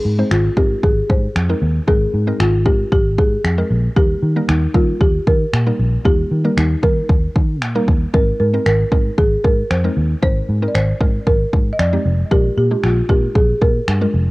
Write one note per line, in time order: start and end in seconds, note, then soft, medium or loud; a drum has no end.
0.00 0.10 D#4 medium
0.00 0.33 G#4 medium
0.00 0.10 A#4 medium
0.05 0.22 G#2 loud
0.19 0.49 G#3 medium
0.19 0.49 C4 medium
0.19 0.49 D#4 medium
0.19 0.49 C5 medium
0.31 0.48 G#1 loud
0.31 0.58 F4 medium
0.31 finger snap loud
0.57 0.74 G#2 medium
0.57 1.29 G#3 medium
0.57 1.29 C4 medium
0.57 1.29 D#4 medium
0.57 0.82 G4 medium
0.57 1.29 A#4 medium
0.57 kick medium
0.83 1.00 G#1 loud
0.83 0.95 G#4 medium
0.83 kick loud
1.10 1.27 G#2 medium
1.10 1.58 C5 medium
1.10 kick medium
1.36 1.53 F2 medium
1.36 finger snap loud
1.49 1.80 G#3 medium
1.49 1.80 C4 medium
1.49 1.80 D#4 medium
1.49 1.80 A#4 medium
1.62 1.79 D#2 medium
1.87 2.05 G#1 loud
1.87 2.19 G#3 medium
1.87 2.19 C4 medium
1.87 2.19 D#4 medium
1.87 2.42 G#4 loud
1.87 2.19 A#4 medium
1.87 kick loud
2.14 2.31 G#2 loud
2.27 2.58 G#3 medium
2.27 2.58 C4 medium
2.27 2.58 D#4 medium
2.27 2.58 A#4 medium
2.40 2.67 G#1 loud
2.40 2.67 F4 medium
2.40 finger snap loud
2.66 2.83 G#2 medium
2.66 3.38 G#3 medium
2.66 3.38 C4 medium
2.66 3.38 D#4 medium
2.66 2.90 G4 medium
2.66 3.38 A#4 medium
2.66 kick medium
2.92 3.20 G#1 loud
2.92 3.04 G4 loud
2.92 kick loud
3.18 3.35 G#2 medium
3.18 3.67 G#4 medium
3.18 kick medium
3.44 3.61 F2 medium
3.44 finger snap loud
3.58 3.88 G#3 medium
3.58 3.88 C4 medium
3.58 3.88 D#4 medium
3.58 3.89 A#4 medium
3.70 3.87 A#1 medium
3.96 4.13 D#2 loud
3.96 4.27 G3 medium
3.96 4.27 A#3 medium
3.96 4.27 D#4 medium
3.96 4.50 G4 loud
3.96 4.27 A#4 medium
3.96 kick loud
4.22 4.39 D#3 medium
4.36 4.67 G3 medium
4.36 4.67 A#3 medium
4.36 4.67 D#4 medium
4.36 4.67 A#4 medium
4.49 4.66 D#2 loud
4.49 4.73 D#4 medium
4.49 finger snap loud
4.74 4.92 D#3 loud
4.74 5.46 G3 medium
4.74 5.47 A#3 medium
4.74 5.47 D#4 medium
4.74 4.99 F4 medium
4.74 5.47 A#4 medium
4.74 kick medium
5.01 5.18 D#2 loud
5.01 5.28 G4 medium
5.01 kick medium
5.27 5.44 D#3 loud
5.27 5.76 A#4 medium
5.27 kick loud
5.53 5.70 A#2 loud
5.53 finger snap loud
5.66 5.97 G3 medium
5.66 5.97 A#3 medium
5.66 5.97 D#4 medium
5.66 5.97 A#4 medium
5.79 5.96 A#1 medium
6.05 6.22 D#2 loud
6.05 6.36 G3 medium
6.05 6.36 A#3 medium
6.05 6.36 D#4 medium
6.05 6.36 F4 medium
6.05 6.54 G4 loud
6.05 kick loud
6.31 6.48 D#3 medium
6.45 6.75 G3 medium
6.45 6.75 A#3 medium
6.45 6.75 D#4 medium
6.45 6.75 A#4 medium
6.57 6.74 D#2 loud
6.57 6.84 D#4 medium
6.57 finger snap loud
6.83 7.00 D#3 loud
6.83 7.55 G3 medium
6.83 7.55 A#3 medium
6.83 7.55 D#4 medium
6.83 7.84 A#4 loud
6.83 7.55 A#4 medium
6.83 kick medium
7.09 7.26 D#2 loud
7.09 kick loud
7.36 7.62 D#3 loud
7.36 kick medium
7.62 7.79 A#2 medium
7.62 finger snap loud
7.75 8.06 G3 medium
7.75 8.06 A#3 medium
7.75 8.06 D#4 medium
7.75 8.06 A#4 loud
7.88 8.05 D#2 medium
7.88 kick medium
8.14 8.31 G#1 loud
8.14 8.45 G#3 medium
8.14 8.45 C4 medium
8.14 8.45 D#4 medium
8.14 8.39 A#4 medium
8.14 8.45 A#4 medium
8.14 kick loud
8.40 8.57 G#2 loud
8.40 8.65 A#4 medium
8.54 8.84 G#3 medium
8.54 8.84 C4 medium
8.54 8.84 D#4 medium
8.54 8.84 A#4 medium
8.66 8.83 G#1 loud
8.66 9.20 A#4 medium
8.66 finger snap loud
8.92 9.09 G#2 medium
8.92 9.64 G#3 medium
8.92 9.64 C4 medium
8.92 9.64 D#4 medium
8.92 9.64 A#4 medium
8.92 kick medium
9.18 9.35 G#1 loud
9.18 9.45 G#4 medium
9.18 kick loud
9.44 9.61 G#2 medium
9.44 9.71 A#4 medium
9.44 kick medium
9.70 9.87 F2 medium
9.70 10.08 C5 loud
9.70 finger snap loud
9.84 10.14 G#3 medium
9.84 10.15 C4 medium
9.84 10.15 D#4 medium
9.84 10.15 A#4 medium
9.97 10.14 D#2 medium
10.22 10.40 G#1 loud
10.22 10.53 G#3 medium
10.22 10.53 C4 medium
10.22 10.54 D#4 medium
10.22 10.54 A#4 medium
10.22 10.70 C5 loud
10.22 kick loud
10.49 10.66 G#2 loud
10.62 10.93 G#3 medium
10.62 10.93 C4 medium
10.62 10.93 D#4 medium
10.62 10.93 A#4 medium
10.68 10.75 D5 medium
10.75 10.92 G#1 loud
10.75 11.28 C5 loud
10.75 finger snap loud
11.01 11.18 G#2 loud
11.01 11.73 G#3 medium
11.01 11.73 C4 medium
11.01 11.73 D#4 medium
11.01 11.73 A#4 medium
11.01 kick medium
11.27 11.44 G#1 loud
11.27 11.69 A#4 medium
11.27 kick medium
11.53 11.70 G#2 medium
11.53 kick medium
11.73 11.79 D#5 medium
11.79 11.96 F2 medium
11.79 12.16 D5 loud
11.79 finger snap loud
11.93 12.23 G#3 medium
11.93 12.23 C4 medium
11.93 12.23 D#4 medium
11.93 12.23 G4 medium
12.05 12.22 F1 medium
12.31 12.48 A#1 loud
12.31 12.62 G#3 medium
12.31 12.62 D4 medium
12.31 12.62 F4 medium
12.31 12.56 G4 loud
12.31 12.62 A#4 medium
12.31 kick loud
12.57 12.74 A#2 loud
12.57 12.84 G4 medium
12.71 13.01 G#3 medium
12.71 13.01 D4 medium
12.71 13.02 F4 medium
12.71 13.02 G4 medium
12.83 13.00 A#1 medium
12.83 13.10 F4 medium
12.83 finger snap loud
13.09 13.26 A#2 loud
13.09 13.81 G#3 medium
13.09 13.81 D4 medium
13.09 13.81 F4 medium
13.09 13.36 G4 medium
13.09 13.81 A#4 medium
13.09 kick medium
13.35 13.52 A#1 loud
13.35 13.60 G#4 medium
13.35 kick loud
13.62 13.79 A#2 medium
13.62 14.10 A#4 medium
13.62 kick medium
13.88 14.05 G2 loud
13.88 finger snap loud
14.01 14.31 G#3 medium
14.01 14.31 D4 medium
14.01 14.31 F4 medium
14.01 14.31 A#4 medium
14.14 14.31 F1 medium